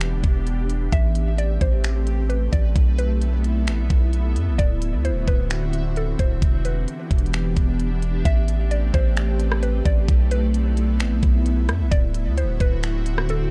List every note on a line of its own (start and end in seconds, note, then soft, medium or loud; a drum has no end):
0.00 0.22 E1 loud
0.00 0.91 E3 medium
0.00 0.91 B3 medium
0.00 0.91 D4 medium
0.00 0.91 G4 medium
0.00 2.72 G4 medium
0.00 0.88 E5 medium
0.00 finger snap loud
0.00 closed hi-hat medium
0.24 0.90 E1 loud
0.24 kick medium
0.24 closed hi-hat medium
0.47 closed hi-hat medium
0.69 closed hi-hat medium
0.92 1.58 A1 loud
0.92 4.55 A3 medium
0.92 2.74 C4 medium
0.92 2.74 G4 medium
0.92 2.74 B4 medium
0.92 2.74 D5 medium
0.92 1.36 E5 loud
0.92 kick loud
0.92 closed hi-hat medium
1.15 closed hi-hat medium
1.38 1.60 D5 medium
1.38 closed hi-hat medium
1.61 2.49 A1 loud
1.61 1.83 C5 medium
1.61 kick medium
1.61 closed hi-hat medium
1.84 finger snap loud
1.84 closed hi-hat medium
2.07 closed hi-hat medium
2.29 2.51 B4 medium
2.29 closed hi-hat medium
2.52 2.75 A1 loud
2.52 2.74 D5 medium
2.52 kick medium
2.52 closed hi-hat medium
2.75 3.69 B1 loud
2.75 4.57 B3 medium
2.75 6.38 E4 loud
2.75 4.57 A4 medium
2.75 4.57 E5 medium
2.75 kick loud
2.75 closed hi-hat medium
2.98 3.20 B4 medium
2.98 closed hi-hat medium
3.22 closed hi-hat medium
3.44 closed hi-hat medium
3.67 3.80 A1 loud
3.67 finger snap loud
3.67 closed hi-hat medium
3.79 3.90 B1 loud
3.90 4.38 B1 loud
3.90 kick medium
3.90 closed hi-hat medium
4.13 closed hi-hat medium
4.36 4.49 F#2 loud
4.36 closed hi-hat medium
4.47 4.58 B1 medium
4.58 4.95 D1 loud
4.58 6.40 D3 medium
4.58 6.40 C4 medium
4.58 6.40 F#4 medium
4.58 6.40 F#4 loud
4.58 5.02 D5 loud
4.58 6.40 E5 medium
4.58 kick loud
4.58 closed hi-hat medium
4.82 closed hi-hat medium
4.93 5.12 D2 loud
5.05 5.26 C5 medium
5.05 closed hi-hat medium
5.10 5.27 D1 medium
5.28 6.16 D1 loud
5.28 5.50 B4 medium
5.28 kick medium
5.28 closed hi-hat medium
5.50 finger snap loud
5.50 closed hi-hat medium
5.73 closed hi-hat medium
5.96 6.18 A4 medium
5.96 closed hi-hat medium
6.19 6.41 D1 loud
6.19 6.41 C5 medium
6.19 kick medium
6.19 closed hi-hat medium
6.42 6.86 E1 loud
6.42 8.24 E3 medium
6.42 8.24 B3 medium
6.42 8.23 D4 medium
6.42 8.24 D4 medium
6.42 8.23 G4 medium
6.42 8.24 G4 medium
6.42 8.23 E5 medium
6.42 kick loud
6.42 closed hi-hat medium
6.65 6.87 B4 medium
6.65 closed hi-hat medium
6.88 closed hi-hat medium
7.11 7.55 E1 loud
7.11 kick medium
7.11 closed hi-hat medium
7.18 closed hi-hat medium
7.26 closed hi-hat soft
7.33 finger snap loud
7.33 closed hi-hat medium
7.56 8.23 E1 loud
7.56 kick medium
7.56 closed hi-hat medium
7.80 closed hi-hat medium
8.02 closed hi-hat medium
8.25 8.91 A1 loud
8.25 11.88 A3 medium
8.25 10.07 C4 medium
8.25 10.07 G4 medium
8.25 10.07 G4 loud
8.25 10.07 B4 medium
8.25 10.07 D5 medium
8.25 8.68 E5 loud
8.25 kick loud
8.25 closed hi-hat medium
8.48 closed hi-hat medium
8.71 8.93 D5 medium
8.71 closed hi-hat medium
8.94 9.82 A1 loud
8.94 9.16 C5 medium
8.94 kick medium
8.94 closed hi-hat medium
9.17 finger snap loud
9.17 closed hi-hat medium
9.40 closed hi-hat medium
9.52 cross-stick loud
9.63 9.84 B4 medium
9.63 closed hi-hat medium
9.85 10.08 A1 loud
9.85 10.07 D5 medium
9.85 kick loud
9.85 closed hi-hat medium
10.08 11.02 B1 loud
10.08 11.90 B3 medium
10.08 13.51 E4 loud
10.08 11.90 A4 medium
10.08 11.90 E5 medium
10.08 kick loud
10.08 closed hi-hat medium
10.31 10.53 B4 medium
10.31 closed hi-hat medium
10.54 closed hi-hat medium
10.77 closed hi-hat medium
11.00 11.13 A1 medium
11.00 finger snap loud
11.00 closed hi-hat medium
11.12 11.22 B1 loud
11.23 11.70 B1 loud
11.23 kick medium
11.23 closed hi-hat medium
11.46 closed hi-hat medium
11.69 11.82 F#2 medium
11.69 cross-stick loud
11.69 closed hi-hat medium
11.80 11.91 B1 loud
11.91 12.28 D1 loud
11.91 13.51 D3 medium
11.91 13.51 C4 medium
11.91 13.51 F#4 medium
11.91 12.35 D5 loud
11.91 13.51 E5 medium
11.91 kick loud
11.91 closed hi-hat medium
12.14 closed hi-hat medium
12.26 12.45 D2 loud
12.38 12.59 C5 medium
12.38 closed hi-hat medium
12.43 12.60 D1 medium
12.60 13.48 D1 loud
12.60 12.82 B4 loud
12.60 kick medium
12.60 closed hi-hat medium
12.83 finger snap loud
12.83 closed hi-hat medium
13.06 closed hi-hat medium
13.18 cross-stick loud
13.29 13.51 A4 medium
13.29 closed hi-hat medium